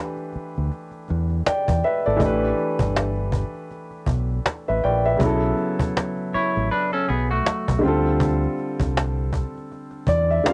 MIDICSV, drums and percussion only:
0, 0, Header, 1, 2, 480
1, 0, Start_track
1, 0, Tempo, 750000
1, 1409, Time_signature, 4, 2, 24, 8
1, 6740, End_track
2, 0, Start_track
2, 0, Title_t, "Cajon"
2, 104, Note_on_c, 9, 38, 27
2, 168, Note_off_c, 9, 38, 0
2, 207, Note_on_c, 9, 38, 33
2, 271, Note_off_c, 9, 38, 0
2, 351, Note_on_c, 9, 38, 24
2, 415, Note_off_c, 9, 38, 0
2, 457, Note_on_c, 9, 38, 49
2, 521, Note_off_c, 9, 38, 0
2, 583, Note_on_c, 9, 38, 26
2, 647, Note_off_c, 9, 38, 0
2, 692, Note_on_c, 9, 38, 42
2, 756, Note_off_c, 9, 38, 0
2, 831, Note_on_c, 9, 38, 25
2, 895, Note_off_c, 9, 38, 0
2, 937, Note_on_c, 9, 38, 108
2, 1001, Note_off_c, 9, 38, 0
2, 1076, Note_on_c, 9, 36, 94
2, 1140, Note_off_c, 9, 36, 0
2, 1171, Note_on_c, 9, 38, 38
2, 1235, Note_off_c, 9, 38, 0
2, 1306, Note_on_c, 9, 38, 26
2, 1370, Note_off_c, 9, 38, 0
2, 1408, Note_on_c, 9, 36, 102
2, 1472, Note_off_c, 9, 36, 0
2, 1552, Note_on_c, 9, 38, 24
2, 1616, Note_off_c, 9, 38, 0
2, 1647, Note_on_c, 9, 38, 34
2, 1711, Note_off_c, 9, 38, 0
2, 1787, Note_on_c, 9, 36, 94
2, 1851, Note_off_c, 9, 36, 0
2, 1898, Note_on_c, 9, 38, 114
2, 1962, Note_off_c, 9, 38, 0
2, 2020, Note_on_c, 9, 38, 28
2, 2084, Note_off_c, 9, 38, 0
2, 2127, Note_on_c, 9, 36, 85
2, 2191, Note_off_c, 9, 36, 0
2, 2269, Note_on_c, 9, 38, 23
2, 2333, Note_off_c, 9, 38, 0
2, 2373, Note_on_c, 9, 38, 44
2, 2437, Note_off_c, 9, 38, 0
2, 2501, Note_on_c, 9, 38, 29
2, 2565, Note_off_c, 9, 38, 0
2, 2601, Note_on_c, 9, 36, 93
2, 2665, Note_off_c, 9, 36, 0
2, 2747, Note_on_c, 9, 38, 24
2, 2811, Note_off_c, 9, 38, 0
2, 2852, Note_on_c, 9, 38, 114
2, 2916, Note_off_c, 9, 38, 0
2, 2984, Note_on_c, 9, 38, 22
2, 3048, Note_off_c, 9, 38, 0
2, 3089, Note_on_c, 9, 38, 40
2, 3153, Note_off_c, 9, 38, 0
2, 3222, Note_on_c, 9, 38, 24
2, 3286, Note_off_c, 9, 38, 0
2, 3327, Note_on_c, 9, 36, 106
2, 3391, Note_off_c, 9, 36, 0
2, 3468, Note_on_c, 9, 38, 25
2, 3532, Note_off_c, 9, 38, 0
2, 3567, Note_on_c, 9, 38, 38
2, 3631, Note_off_c, 9, 38, 0
2, 3708, Note_on_c, 9, 36, 97
2, 3772, Note_off_c, 9, 36, 0
2, 3820, Note_on_c, 9, 38, 127
2, 3884, Note_off_c, 9, 38, 0
2, 3946, Note_on_c, 9, 38, 28
2, 4010, Note_off_c, 9, 38, 0
2, 4049, Note_on_c, 9, 38, 34
2, 4113, Note_off_c, 9, 38, 0
2, 4196, Note_on_c, 9, 38, 25
2, 4260, Note_off_c, 9, 38, 0
2, 4302, Note_on_c, 9, 38, 49
2, 4366, Note_off_c, 9, 38, 0
2, 4424, Note_on_c, 9, 38, 29
2, 4488, Note_off_c, 9, 38, 0
2, 4530, Note_on_c, 9, 38, 43
2, 4594, Note_off_c, 9, 38, 0
2, 4669, Note_on_c, 9, 38, 23
2, 4733, Note_off_c, 9, 38, 0
2, 4777, Note_on_c, 9, 38, 114
2, 4841, Note_off_c, 9, 38, 0
2, 4916, Note_on_c, 9, 36, 101
2, 4980, Note_off_c, 9, 36, 0
2, 5148, Note_on_c, 9, 38, 23
2, 5212, Note_off_c, 9, 38, 0
2, 5249, Note_on_c, 9, 36, 110
2, 5313, Note_off_c, 9, 36, 0
2, 5392, Note_on_c, 9, 38, 27
2, 5456, Note_off_c, 9, 38, 0
2, 5489, Note_on_c, 9, 38, 39
2, 5553, Note_off_c, 9, 38, 0
2, 5629, Note_on_c, 9, 36, 91
2, 5693, Note_off_c, 9, 36, 0
2, 5742, Note_on_c, 9, 38, 124
2, 5806, Note_off_c, 9, 38, 0
2, 5864, Note_on_c, 9, 38, 28
2, 5928, Note_off_c, 9, 38, 0
2, 5969, Note_on_c, 9, 36, 84
2, 6033, Note_off_c, 9, 36, 0
2, 6112, Note_on_c, 9, 38, 25
2, 6128, Note_off_c, 9, 38, 0
2, 6128, Note_on_c, 9, 38, 37
2, 6192, Note_off_c, 9, 38, 0
2, 6218, Note_on_c, 9, 38, 44
2, 6282, Note_off_c, 9, 38, 0
2, 6342, Note_on_c, 9, 38, 28
2, 6406, Note_off_c, 9, 38, 0
2, 6443, Note_on_c, 9, 36, 85
2, 6507, Note_off_c, 9, 36, 0
2, 6587, Note_on_c, 9, 38, 24
2, 6651, Note_off_c, 9, 38, 0
2, 6695, Note_on_c, 9, 38, 125
2, 6740, Note_off_c, 9, 38, 0
2, 6740, End_track
0, 0, End_of_file